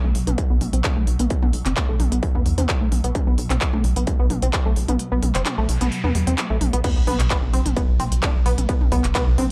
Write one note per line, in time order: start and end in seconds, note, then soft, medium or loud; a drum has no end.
0.00 6.83 B2 medium
0.00 6.83 F#3 medium
0.04 0.13 B1 medium
0.04 0.14 A3 medium
0.04 mid tom medium
0.15 0.25 B1 loud
0.15 open hi-hat loud
0.27 0.36 B1 medium
0.27 0.34 B3 medium
0.27 closed hi-hat medium
0.27 mid tom medium
0.38 kick loud
0.38 closed hi-hat medium
0.50 0.59 B1 medium
0.50 0.57 B3 medium
0.61 0.71 B1 loud
0.61 open hi-hat loud
0.61 mid tom medium
0.73 0.82 B1 medium
0.73 0.80 C4 medium
0.73 closed hi-hat medium
0.84 kick loud
0.84 clap loud
0.84 closed hi-hat medium
0.84 mid tom loud
0.96 1.05 B1 medium
0.96 1.03 A3 medium
1.07 1.17 B1 loud
1.07 open hi-hat loud
1.19 1.28 B1 medium
1.19 1.26 B3 medium
1.19 closed hi-hat medium
1.19 mid tom medium
1.30 kick loud
1.30 closed hi-hat medium
1.43 1.51 B1 medium
1.43 1.49 B3 medium
1.43 mid tom medium
1.53 1.63 B1 loud
1.53 open hi-hat loud
1.66 1.74 F#1 medium
1.66 1.72 C4 medium
1.66 clap medium
1.66 closed hi-hat medium
1.77 kick loud
1.77 clap loud
1.77 closed hi-hat medium
1.77 mid tom medium
1.89 1.97 B1 medium
1.89 1.99 A3 medium
2.00 2.09 B1 loud
2.00 open hi-hat loud
2.00 mid tom loud
2.12 2.20 B1 medium
2.12 2.18 B3 medium
2.12 closed hi-hat medium
2.23 kick loud
2.23 open hi-hat medium
2.35 2.43 E2 medium
2.35 2.42 B3 medium
2.35 mid tom medium
2.46 2.55 E2 loud
2.46 open hi-hat loud
2.58 2.66 E2 medium
2.58 2.65 C4 medium
2.58 closed hi-hat medium
2.58 mid tom loud
2.69 kick loud
2.69 clap loud
2.69 closed hi-hat medium
2.81 2.90 B1 medium
2.81 2.88 A3 medium
2.92 3.01 B1 loud
2.92 open hi-hat loud
2.92 mid tom medium
3.04 3.13 B1 loud
3.04 3.11 B3 medium
3.04 closed hi-hat medium
3.15 kick loud
3.15 closed hi-hat medium
3.15 mid tom loud
3.27 3.36 B1 medium
3.27 3.34 B3 medium
3.38 3.48 B1 loud
3.38 open hi-hat loud
3.50 3.59 B1 medium
3.50 3.57 C4 medium
3.50 clap medium
3.50 closed hi-hat medium
3.50 mid tom medium
3.61 kick loud
3.61 clap loud
3.61 closed hi-hat medium
3.73 3.82 B1 medium
3.73 3.83 A3 medium
3.73 mid tom loud
3.84 3.94 B1 loud
3.84 open hi-hat loud
3.96 4.05 B1 medium
3.96 4.03 B3 medium
3.96 closed hi-hat medium
4.07 kick loud
4.07 closed hi-hat medium
4.07 mid tom medium
4.19 4.28 B1 medium
4.19 4.26 B3 medium
4.30 4.40 B1 loud
4.30 open hi-hat loud
4.30 mid tom medium
4.42 4.51 B1 loud
4.42 4.49 C4 medium
4.42 closed hi-hat medium
4.53 kick loud
4.53 clap loud
4.53 closed hi-hat medium
4.66 4.74 B1 medium
4.66 4.72 A3 medium
4.66 mid tom medium
4.76 4.86 B1 loud
4.76 open hi-hat loud
4.88 4.97 B1 medium
4.88 4.95 B3 medium
4.88 closed hi-hat medium
4.88 mid tom loud
4.99 closed hi-hat medium
4.99 noise sweep medium
5.12 5.20 B1 medium
5.12 5.18 B3 medium
5.23 5.32 B1 loud
5.23 open hi-hat loud
5.23 mid tom medium
5.35 5.43 F#1 medium
5.35 5.41 C4 medium
5.35 clap medium
5.35 closed hi-hat medium
5.46 clap loud
5.46 closed hi-hat medium
5.46 mid tom medium
5.58 5.66 B1 medium
5.58 5.68 A3 medium
5.69 5.78 B1 loud
5.69 open hi-hat loud
5.81 5.90 B1 medium
5.81 5.88 B3 medium
5.81 closed hi-hat medium
5.81 mid tom medium
5.92 open hi-hat medium
6.04 6.13 E2 medium
6.04 6.11 B3 medium
6.04 mid tom medium
6.15 6.25 E2 loud
6.15 open hi-hat loud
6.27 6.36 E2 medium
6.27 6.34 C4 medium
6.27 closed hi-hat medium
6.38 clap loud
6.38 closed hi-hat medium
6.38 mid tom medium
6.50 6.59 B1 medium
6.50 6.57 A3 medium
6.61 6.71 B1 loud
6.61 open hi-hat loud
6.61 mid tom loud
6.73 6.82 B1 medium
6.73 6.80 B3 medium
6.73 closed hi-hat medium
6.84 9.52 B2 medium
6.84 9.52 F#3 medium
6.84 6.89 B3 medium
6.84 kick loud
6.84 closed hi-hat medium
6.84 mid tom medium
6.84 ride medium
6.84 crash loud
6.84 sub drop medium
6.96 7.05 B1 medium
7.07 7.17 B1 loud
7.07 7.18 B3 medium
7.07 open hi-hat loud
7.07 mid tom medium
7.20 7.28 B1 medium
7.20 clap medium
7.20 closed hi-hat medium
7.30 7.38 B3 medium
7.30 kick loud
7.30 clap loud
7.30 closed hi-hat medium
7.30 ride medium
7.42 7.51 B1 medium
7.42 mid tom medium
7.53 7.63 B1 loud
7.53 7.61 C4 medium
7.53 open hi-hat loud
7.66 7.74 B1 medium
7.66 closed hi-hat medium
7.66 mid tom medium
7.77 7.81 B3 medium
7.77 kick loud
7.77 closed hi-hat medium
7.77 ride medium
7.89 7.97 B1 medium
8.00 8.09 B1 loud
8.00 8.04 C4 medium
8.00 open hi-hat loud
8.00 mid tom medium
8.12 8.20 B1 medium
8.12 closed hi-hat medium
8.23 8.30 D4 medium
8.23 kick loud
8.23 clap loud
8.23 closed hi-hat medium
8.23 mid tom medium
8.23 ride medium
8.35 8.43 B1 medium
8.46 8.55 B1 loud
8.46 8.53 B3 medium
8.46 open hi-hat loud
8.58 8.66 B1 medium
8.58 closed hi-hat medium
8.58 mid tom medium
8.69 8.73 B3 medium
8.69 kick loud
8.69 closed hi-hat medium
8.69 ride medium
8.81 8.90 B1 medium
8.81 mid tom medium
8.92 9.02 B1 loud
8.92 9.03 B3 medium
8.92 kick medium
8.92 open hi-hat loud
9.04 9.13 F#1 medium
9.04 clap medium
9.04 closed hi-hat medium
9.15 9.22 B3 medium
9.15 kick loud
9.15 clap loud
9.15 closed hi-hat medium
9.15 mid tom medium
9.15 ride medium
9.27 9.36 B1 medium
9.38 9.48 B1 loud
9.38 9.45 C4 medium
9.38 open hi-hat loud
9.38 mid tom medium